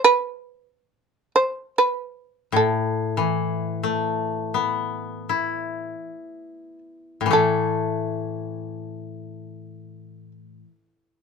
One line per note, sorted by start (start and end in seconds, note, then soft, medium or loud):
0.04 1.31 B4 medium
1.36 1.75 C5 medium
1.78 2.50 B4 medium
2.52 5.90 A2 soft
2.56 6.78 A4 medium
3.17 6.08 E3 soft
3.83 6.83 A3 soft
4.54 7.53 B3 soft
5.29 8.18 E4 soft
7.21 10.59 A2 soft
7.26 10.64 E3 soft
7.31 10.33 A3 soft
7.31 10.31 A4 medium